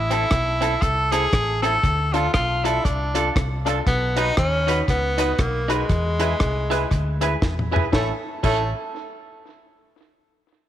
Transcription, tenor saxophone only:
0, 0, Header, 1, 2, 480
1, 0, Start_track
1, 0, Key_signature, 0, "minor"
1, 0, Tempo, 507614
1, 1734, Time_signature, 4, 2, 24, 8
1, 10107, End_track
2, 0, Start_track
2, 0, Title_t, "Tenor saxophone"
2, 0, Program_c, 0, 66
2, 0, Note_on_c, 0, 64, 102
2, 777, Note_on_c, 0, 69, 105
2, 791, Note_off_c, 0, 64, 0
2, 1064, Note_on_c, 0, 68, 115
2, 1078, Note_off_c, 0, 69, 0
2, 1528, Note_off_c, 0, 68, 0
2, 1534, Note_on_c, 0, 69, 111
2, 2018, Note_on_c, 0, 65, 96
2, 2032, Note_off_c, 0, 69, 0
2, 2202, Note_off_c, 0, 65, 0
2, 2208, Note_on_c, 0, 65, 99
2, 2500, Note_on_c, 0, 64, 87
2, 2515, Note_off_c, 0, 65, 0
2, 2691, Note_on_c, 0, 62, 77
2, 2705, Note_off_c, 0, 64, 0
2, 3172, Note_off_c, 0, 62, 0
2, 3664, Note_on_c, 0, 59, 98
2, 3956, Note_on_c, 0, 63, 102
2, 3970, Note_off_c, 0, 59, 0
2, 4137, Note_off_c, 0, 63, 0
2, 4142, Note_on_c, 0, 61, 112
2, 4585, Note_off_c, 0, 61, 0
2, 4634, Note_on_c, 0, 59, 99
2, 5115, Note_on_c, 0, 58, 83
2, 5129, Note_off_c, 0, 59, 0
2, 5402, Note_on_c, 0, 56, 96
2, 5416, Note_off_c, 0, 58, 0
2, 7025, Note_off_c, 0, 56, 0
2, 7512, Note_on_c, 0, 57, 85
2, 7664, Note_off_c, 0, 57, 0
2, 7990, Note_on_c, 0, 57, 92
2, 8249, Note_off_c, 0, 57, 0
2, 10107, End_track
0, 0, End_of_file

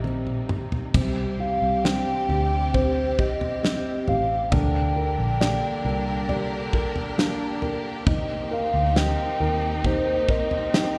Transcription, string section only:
0, 0, Header, 1, 2, 480
1, 0, Start_track
1, 0, Tempo, 898204
1, 506, Time_signature, 4, 2, 24, 8
1, 1943, Tempo, 887574
1, 5915, End_track
2, 0, Start_track
2, 0, Title_t, "String section"
2, 0, Program_c, 0, 48
2, 0, Note_on_c, 0, 48, 57
2, 0, Note_on_c, 0, 55, 51
2, 0, Note_on_c, 0, 58, 49
2, 0, Note_on_c, 0, 63, 51
2, 484, Note_off_c, 0, 63, 0
2, 487, Note_off_c, 0, 48, 0
2, 487, Note_off_c, 0, 58, 0
2, 488, Note_off_c, 0, 55, 0
2, 508, Note_on_c, 0, 60, 52
2, 508, Note_on_c, 0, 67, 66
2, 509, Note_on_c, 0, 55, 55
2, 510, Note_on_c, 0, 48, 59
2, 2406, Note_off_c, 0, 60, 0
2, 2406, Note_off_c, 0, 67, 0
2, 2407, Note_off_c, 0, 48, 0
2, 2407, Note_off_c, 0, 55, 0
2, 2427, Note_on_c, 0, 50, 63
2, 2427, Note_on_c, 0, 70, 64
2, 2428, Note_on_c, 0, 67, 56
2, 2429, Note_on_c, 0, 62, 58
2, 4323, Note_off_c, 0, 50, 0
2, 4323, Note_off_c, 0, 62, 0
2, 4323, Note_off_c, 0, 70, 0
2, 4341, Note_on_c, 0, 58, 67
2, 4341, Note_on_c, 0, 63, 68
2, 4342, Note_on_c, 0, 60, 55
2, 5293, Note_off_c, 0, 60, 0
2, 5300, Note_on_c, 0, 60, 64
2, 5915, Note_off_c, 0, 58, 0
2, 5915, Note_off_c, 0, 60, 0
2, 5915, Note_off_c, 0, 63, 0
2, 5915, Note_off_c, 0, 67, 0
2, 5915, End_track
0, 0, End_of_file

